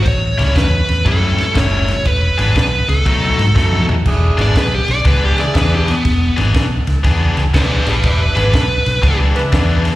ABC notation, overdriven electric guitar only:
X:1
M:4/4
L:1/8
Q:"Swing" 1/4=120
K:Emix
V:1 name="Overdriven electric guitar"
z [A,,=G,CE] z2 [A,,G,CE] z [A,,G,CE] z | z [E,B,DG] z2 [B,,F,A,^D] z [B,,F,A,D] z | z [E,B,DG] z2 [E,B,DG] z [E,B,DG] z | z [E,B,DG] z2 [E,B,DG] z [E,B,DG] z |
z [E,B,DG] z2 [E,B,DG] z [E,B,DG] z |]